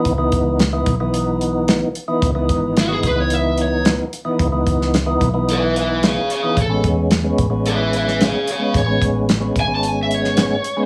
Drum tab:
HH |x-x-x-x-x-x-x-x-|x-x-x-x-x-x-x-x-|x-x-x-x-x-x-x-x-|x-x-x-x-x-x-x-x-|
SD |----o-------o---|----o-------o---|---oo-------o---|----o------oo---|
BD |o-o---o---------|o-o---o---------|o-o---o---------|o-o---o---------|

HH |x-x-x-x-x-x-x-x-|
SD |----o------oo---|
BD |o-o---o---------|